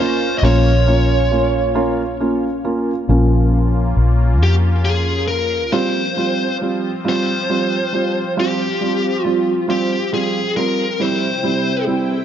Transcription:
0.00 0.39 A#1 medium
0.00 0.25 A#3 medium
0.00 3.05 A#3 medium
0.00 0.25 C#4 medium
0.00 3.05 C#4 medium
0.00 0.25 F4 medium
0.00 3.04 F4 medium
0.00 0.37 C5 medium
0.38 0.44 D#5 medium
0.43 3.04 A#1 medium
0.43 0.69 A#3 medium
0.43 0.69 C#4 medium
0.43 0.69 F4 medium
0.43 2.17 C#5 medium
0.87 1.13 A#3 medium
0.87 1.13 C#4 medium
0.87 1.13 F4 medium
1.31 1.57 A#3 medium
1.31 1.57 C#4 medium
1.31 1.58 F4 medium
1.75 2.01 A#3 medium
1.75 2.01 C#4 medium
1.75 2.01 F4 loud
2.20 2.46 A#3 medium
2.20 2.46 C#4 medium
2.20 2.46 F4 medium
2.64 2.90 A#3 medium
2.64 2.90 C#4 medium
2.64 2.90 F4 medium
3.08 3.93 A#1 medium
3.08 4.37 F3 soft
3.08 5.70 A#3 medium
3.08 4.37 A#3 soft
3.08 5.70 C#4 medium
3.08 4.37 C#4 soft
3.08 5.70 F4 medium
3.97 4.41 A#1 medium
4.41 5.69 F2 medium
4.41 4.55 G4 medium
4.85 5.27 G#4 medium
5.28 5.74 A#4 medium
5.72 10.95 F3 medium
5.72 5.98 G3 medium
5.72 5.99 C4 medium
5.72 12.25 C4 medium
5.72 5.99 F4 medium
5.72 10.96 F4 medium
5.72 6.57 C5 medium
6.17 6.43 G3 medium
6.17 6.43 C4 medium
6.17 6.43 F4 medium
6.61 6.87 G3 medium
6.61 6.87 C4 medium
6.61 6.87 F4 medium
7.04 7.30 G3 medium
7.04 7.31 C4 medium
7.04 7.31 F4 medium
7.09 8.35 C5 medium
7.49 7.75 G3 medium
7.49 7.75 C4 medium
7.49 7.75 F4 medium
7.92 8.18 G3 medium
7.92 8.19 C4 medium
7.92 8.19 F4 medium
8.37 8.62 G3 medium
8.37 8.63 C4 medium
8.37 8.63 F4 medium
8.37 9.25 G4 medium
8.81 9.06 G3 medium
8.81 9.06 C4 medium
8.81 9.07 F4 medium
9.25 9.50 G3 medium
9.25 9.50 C4 medium
9.25 9.65 F4 medium
9.25 9.50 F4 medium
9.68 9.93 G3 medium
9.68 9.94 C4 medium
9.68 9.94 F4 medium
9.68 10.13 G4 medium
10.13 10.38 G3 medium
10.13 10.38 C4 medium
10.13 10.38 F4 medium
10.13 10.56 G#4 medium
10.56 10.81 G3 medium
10.56 10.81 C4 medium
10.56 10.82 F4 medium
10.56 11.01 A#4 medium
11.00 12.25 C3 medium
11.00 11.25 G3 medium
11.00 11.25 C4 medium
11.00 12.25 E4 medium
11.00 11.25 E4 medium
11.00 11.84 C5 medium
11.00 12.25 G5 medium
11.43 11.69 G3 medium
11.43 11.69 C4 medium
11.43 11.69 E4 medium
11.87 12.13 G3 medium
11.87 12.13 C4 medium
11.87 12.13 E4 medium

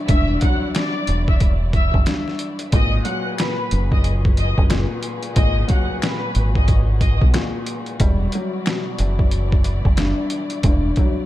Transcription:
0.00 0.10 G2 medium
0.00 2.75 B2 medium
0.00 2.68 E3 medium
0.00 2.68 E4 medium
0.00 2.68 F#4 medium
0.00 2.68 D5 medium
0.08 0.36 E1 loud
0.08 0.73 G2 medium
0.08 0.38 E5 loud
0.08 0.39 E6 medium
0.08 kick loud
0.08 closed hi-hat loud
0.41 2.41 F#3 medium
0.41 0.72 F#5 medium
0.41 0.72 F#6 medium
0.41 kick loud
0.41 closed hi-hat medium
0.75 2.05 G2 medium
0.75 1.25 D5 medium
0.75 1.26 D6 medium
0.75 finger snap medium
0.75 snare loud
0.75 closed hi-hat medium
1.07 1.90 E1 medium
1.07 closed hi-hat medium
1.28 1.40 E5 medium
1.28 1.40 E6 medium
1.28 kick medium
1.40 kick medium
1.40 closed hi-hat medium
1.73 1.92 E5 medium
1.73 1.92 E6 medium
1.73 kick medium
1.73 closed hi-hat medium
1.94 2.05 F#1 medium
1.94 kick medium
2.06 2.72 G2 medium
2.06 finger snap medium
2.06 snare loud
2.06 closed hi-hat medium
2.28 snare soft
2.39 closed hi-hat medium
2.59 closed hi-hat medium
2.72 3.00 G#1 loud
2.72 7.96 A#2 medium
2.72 3.38 A#2 medium
2.72 11.26 F#4 medium
2.72 7.96 G#4 medium
2.72 7.96 B4 medium
2.72 3.03 D#5 loud
2.72 3.03 D#6 medium
2.72 kick loud
2.72 closed hi-hat loud
3.05 5.03 F#3 medium
3.05 3.35 F#5 medium
3.05 3.36 F#6 medium
3.05 closed hi-hat medium
3.37 4.68 A#2 medium
3.37 3.88 B4 medium
3.37 3.88 B5 medium
3.37 finger snap medium
3.37 snare loud
3.37 closed hi-hat medium
3.71 4.54 F#1 medium
3.71 closed hi-hat medium
3.92 4.04 D#5 medium
3.92 4.04 D#6 medium
3.92 kick loud
4.04 closed hi-hat medium
4.25 kick loud
4.37 4.56 D#5 medium
4.37 4.56 D#6 medium
4.37 closed hi-hat medium
4.58 4.85 F#1 loud
4.58 kick loud
4.70 5.35 A#2 medium
4.70 finger snap medium
4.70 snare loud
4.70 closed hi-hat medium
5.03 closed hi-hat medium
5.23 closed hi-hat medium
5.36 5.63 G#1 loud
5.36 6.01 A#2 medium
5.36 5.66 D#5 loud
5.36 5.66 D#6 medium
5.36 kick loud
5.36 closed hi-hat loud
5.68 7.66 F#3 medium
5.68 6.00 F#5 medium
5.68 6.00 F#6 medium
5.68 kick loud
5.68 closed hi-hat medium
6.02 7.32 A#2 medium
6.02 6.52 B4 medium
6.02 6.53 B5 medium
6.02 finger snap medium
6.02 snare loud
6.02 closed hi-hat medium
6.35 7.18 G#1 medium
6.35 closed hi-hat medium
6.55 6.67 D#5 medium
6.55 6.67 D#6 medium
6.55 kick medium
6.68 kick medium
6.68 closed hi-hat medium
7.01 7.19 D#5 medium
7.01 7.20 D#6 medium
7.01 kick medium
7.01 closed hi-hat medium
7.22 7.32 B1 loud
7.22 kick loud
7.33 8.00 A#2 medium
7.33 finger snap medium
7.33 snare loud
7.33 closed hi-hat medium
7.66 closed hi-hat medium
7.86 closed hi-hat medium
7.99 8.27 E1 loud
7.99 11.26 E3 medium
7.99 9.98 G3 medium
7.99 11.26 E4 medium
7.99 11.26 D5 medium
7.99 kick loud
7.99 closed hi-hat loud
8.32 10.32 F#3 medium
8.32 closed hi-hat medium
8.66 10.64 B2 medium
8.66 finger snap medium
8.66 snare loud
8.66 closed hi-hat medium
8.99 9.81 F#1 medium
8.99 closed hi-hat medium
9.19 kick medium
9.31 closed hi-hat medium
9.52 kick loud
9.64 closed hi-hat medium
9.85 10.12 F#1 medium
9.85 kick medium
9.97 10.63 G2 medium
9.97 finger snap medium
9.97 snare loud
9.97 closed hi-hat medium
10.30 closed hi-hat medium
10.50 closed hi-hat medium
10.63 10.91 E1 loud
10.63 11.26 G2 medium
10.63 kick loud
10.63 closed hi-hat loud
10.96 11.26 F#3 medium
10.96 kick loud
10.96 closed hi-hat medium

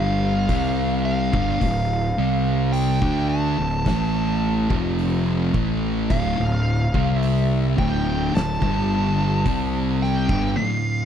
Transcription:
0.00 0.45 G1 medium
0.00 0.48 G2 medium
0.00 0.48 D3 medium
0.00 0.48 G3 medium
0.00 1.04 F5 medium
0.49 1.30 C2 loud
0.49 1.32 C3 medium
0.49 1.32 G3 loud
0.49 1.32 C4 loud
0.49 kick loud
0.49 open hi-hat medium
1.05 2.79 F5 medium
1.33 1.60 G1 medium
1.33 1.60 G2 medium
1.33 1.60 D3 medium
1.33 kick loud
1.61 2.14 D1 medium
1.61 2.07 D2 medium
1.61 2.07 A2 medium
1.61 kick medium
1.61 open hi-hat medium
2.18 2.98 C2 medium
2.18 3.00 C3 medium
2.18 3.01 G3 loud
2.18 3.01 C4 medium
2.72 3.29 G5 medium
2.72 open hi-hat medium
3.02 3.54 D2 loud
3.02 3.56 D3 medium
3.02 3.56 A3 medium
3.02 3.57 D4 medium
3.02 kick loud
3.29 5.50 A5 medium
3.57 3.84 D1 medium
3.57 3.86 D2 medium
3.57 3.85 A2 medium
3.86 4.66 A1 loud
3.86 4.69 A2 medium
3.86 4.69 E3 medium
3.86 4.69 A3 medium
3.86 kick medium
3.86 snare medium
3.86 open hi-hat soft
4.70 5.50 F1 medium
4.70 5.53 F2 medium
4.70 5.53 C3 loud
4.70 5.53 F3 loud
4.70 kick loud
4.99 open hi-hat soft
5.54 6.06 A1 medium
5.54 6.09 A2 medium
5.54 6.09 E3 loud
5.54 6.09 A3 medium
5.54 kick medium
6.10 6.36 D1 medium
6.10 6.37 D2 medium
6.10 6.37 A2 loud
6.10 7.16 F5 medium
6.10 kick loud
6.10 open hi-hat medium
6.38 6.91 D1 medium
6.38 6.83 D2 medium
6.38 6.83 A2 medium
6.94 7.74 C2 medium
6.94 7.76 C3 medium
6.94 7.77 G3 medium
6.94 7.77 C4 loud
6.94 kick loud
7.16 7.74 E5 medium
7.23 open hi-hat medium
7.78 8.30 D1 loud
7.78 8.32 D2 loud
7.78 8.33 A2 medium
7.78 8.33 D3 loud
7.78 8.35 G5 medium
7.78 kick loud
8.34 8.61 D1 medium
8.34 8.62 D2 medium
8.34 8.62 A2 medium
8.34 9.98 A5 loud
8.34 snare loud
8.34 open hi-hat medium
8.62 9.42 G1 loud
8.62 9.44 G2 medium
8.62 9.45 D3 medium
8.62 9.45 G3 medium
8.62 kick loud
9.46 10.26 C2 loud
9.46 10.28 C3 loud
9.46 10.28 G3 loud
9.46 10.28 C4 loud
9.46 kick loud
9.46 open hi-hat medium
10.03 10.54 G5 loud
10.03 snare soft
10.29 10.55 G1 medium
10.29 10.56 G2 medium
10.29 10.56 D3 medium
10.29 kick loud
10.57 11.02 D2 medium
10.57 11.02 A2 medium
10.57 11.05 F5 medium

